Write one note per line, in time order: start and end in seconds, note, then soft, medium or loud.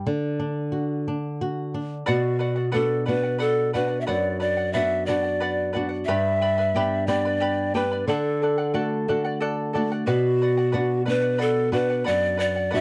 0.06 2.03 D3 medium
0.40 0.72 D4 soft
0.72 1.05 F#4 soft
1.08 1.40 D4 soft
1.41 1.73 F#4 soft
1.74 2.06 D4 soft
2.06 4.04 B2 medium
2.06 2.70 F#4 medium
2.06 2.38 B4 medium
2.06 2.39 D5 medium
2.06 2.39 F#5 medium
2.39 2.56 B4 soft
2.39 2.56 D5 medium
2.39 2.55 F#5 medium
2.56 2.71 D5 soft
2.56 2.71 F#5 soft
2.72 3.07 B3 soft
2.72 3.07 D4 soft
2.72 3.04 A4 medium
2.72 3.04 B4 medium
2.72 3.05 D5 medium
2.72 3.06 F#5 medium
2.76 3.08 F#4 soft
3.06 3.72 B3 soft
3.06 3.72 D4 soft
3.06 3.73 F#4 soft
3.06 3.23 B4 soft
3.06 3.38 B4 medium
3.06 3.23 D5 soft
3.06 3.22 F#5 medium
3.23 3.38 D5 soft
3.23 3.39 F#5 soft
3.38 3.71 A4 medium
3.38 3.72 B4 medium
3.38 3.73 D5 medium
3.38 3.73 F#5 medium
3.73 4.39 B3 soft
3.73 4.39 D4 soft
3.73 4.39 F#4 soft
3.73 3.90 B4 soft
3.73 4.02 B4 medium
3.73 3.88 D5 medium
3.73 3.87 F#5 medium
3.88 4.06 D5 soft
3.88 4.06 F#5 soft
4.01 4.08 E5 medium
4.06 6.04 F#2 medium
4.06 4.38 B4 medium
4.06 4.40 D5 medium
4.06 4.39 D5 medium
4.06 4.40 F#5 medium
4.40 4.57 B4 medium
4.40 4.56 D5 medium
4.40 4.75 D5 medium
4.40 4.56 F#5 soft
4.57 4.72 D5 soft
4.57 4.74 F#5 soft
4.73 5.07 B3 soft
4.73 5.08 D4 soft
4.73 5.08 F#4 soft
4.73 5.07 B4 medium
4.73 5.07 D5 medium
4.73 5.08 E5 medium
4.73 5.08 F#5 medium
5.06 5.72 B3 soft
5.06 5.73 D4 soft
5.06 5.73 F#4 soft
5.06 5.24 B4 soft
5.06 5.81 D5 medium
5.06 5.23 D5 medium
5.06 5.21 F#5 medium
5.23 5.40 D5 soft
5.23 5.40 F#5 soft
5.40 5.72 B4 medium
5.40 5.72 D5 medium
5.40 5.73 F#5 medium
5.73 6.07 B3 soft
5.73 6.07 D4 soft
5.73 6.07 F#4 soft
5.73 5.90 B4 medium
5.73 5.89 D5 medium
5.73 5.88 F#5 medium
5.89 6.07 D5 soft
5.89 6.06 F#5 soft
6.05 8.03 G2 medium
6.05 6.41 G4 medium
6.05 6.40 B4 medium
6.05 6.41 D5 medium
6.05 7.08 E5 loud
6.05 6.40 G5 medium
6.05 6.41 B5 medium
6.42 6.58 B4 medium
6.42 6.57 D5 medium
6.42 6.58 G5 soft
6.42 6.57 B5 medium
6.58 6.75 B4 soft
6.58 6.74 D5 soft
6.58 6.74 B5 soft
6.75 7.07 B3 soft
6.75 7.07 D4 soft
6.75 7.07 G4 soft
6.75 7.08 G4 medium
6.75 7.07 B4 medium
6.75 7.07 D5 medium
6.75 7.07 G5 medium
6.75 7.08 B5 medium
7.07 7.72 B3 soft
7.07 7.72 D4 soft
7.07 7.72 G4 soft
7.07 7.24 B4 soft
7.07 7.77 D5 medium
7.07 7.24 D5 medium
7.07 7.24 G5 soft
7.07 7.24 B5 medium
7.25 7.40 B4 soft
7.25 7.40 D5 soft
7.25 7.41 B5 soft
7.40 7.73 G4 medium
7.40 7.74 B4 medium
7.40 7.74 D5 medium
7.40 7.74 G5 medium
7.40 7.74 B5 medium
7.74 8.06 B3 soft
7.74 8.06 D4 soft
7.74 8.06 G4 soft
7.74 8.09 B4 medium
7.74 7.91 B4 medium
7.74 7.91 D5 soft
7.74 7.91 G5 medium
7.74 7.90 B5 medium
7.92 8.08 B4 soft
7.92 8.07 D5 soft
7.92 8.07 B5 soft
8.07 10.03 D3 medium
8.07 8.82 A4 medium
8.07 8.41 A4 medium
8.07 8.41 D5 medium
8.07 8.41 F#5 medium
8.42 8.58 A4 soft
8.42 8.58 D5 medium
8.42 8.57 F#5 medium
8.58 8.73 D5 soft
8.58 8.73 F#5 soft
8.74 9.07 A3 soft
8.74 9.07 D4 soft
8.74 9.09 F#4 soft
8.74 9.07 A4 medium
8.74 9.07 D5 medium
8.74 9.07 F#5 medium
9.08 9.72 A3 soft
9.08 9.72 D4 soft
9.08 9.73 F#4 soft
9.08 9.24 A4 medium
9.08 9.24 D5 medium
9.08 9.23 F#5 medium
9.25 9.40 D5 soft
9.25 9.41 F#5 soft
9.41 9.72 A4 medium
9.41 9.73 D5 medium
9.41 9.74 F#5 medium
9.73 10.06 A3 soft
9.73 10.07 D4 soft
9.73 10.07 F#4 soft
9.73 9.90 A4 medium
9.73 9.90 D5 medium
9.73 9.91 F#5 medium
9.92 10.06 D5 soft
9.92 10.07 F#5 soft
10.07 12.02 B2 medium
10.07 11.02 F#4 medium
10.07 10.40 B4 medium
10.07 10.40 D5 medium
10.07 10.40 F#5 medium
10.41 10.57 B4 soft
10.41 10.57 D5 soft
10.41 10.56 F#5 soft
10.57 10.72 D5 soft
10.57 10.73 F#5 medium
10.72 11.06 B3 soft
10.72 11.07 D4 soft
10.72 11.07 F#4 soft
10.72 11.04 B4 medium
10.72 11.05 D5 medium
10.72 11.06 F#5 medium
11.05 11.71 B3 soft
11.05 11.71 D4 soft
11.05 11.72 F#4 soft
11.05 11.22 B4 soft
11.05 11.43 B4 medium
11.05 11.22 D5 medium
11.05 11.21 F#5 soft
11.22 11.38 D5 soft
11.22 11.38 F#5 soft
11.38 11.72 A4 medium
11.38 11.71 B4 medium
11.38 11.72 D5 medium
11.38 11.72 F#5 medium
11.72 12.37 B3 soft
11.72 12.37 D4 soft
11.72 12.37 F#4 soft
11.72 11.89 B4 soft
11.72 12.04 B4 medium
11.72 11.89 D5 medium
11.72 11.89 F#5 medium
11.90 12.04 D5 soft
11.90 12.05 F#5 soft
12.04 12.81 F#2 medium
12.04 12.36 B4 medium
12.04 12.37 D5 medium
12.04 12.38 F#5 medium
12.37 12.55 B4 soft
12.37 12.56 D5 medium
12.37 12.76 D5 medium
12.37 12.55 F#5 medium
12.56 12.70 D5 soft
12.56 12.71 F#5 soft
12.71 12.81 B3 soft
12.71 12.81 D4 soft
12.71 12.81 B4 medium
12.71 12.81 D5 medium
12.71 12.81 E5 medium
12.71 12.81 F#5 medium
12.75 12.81 F#4 soft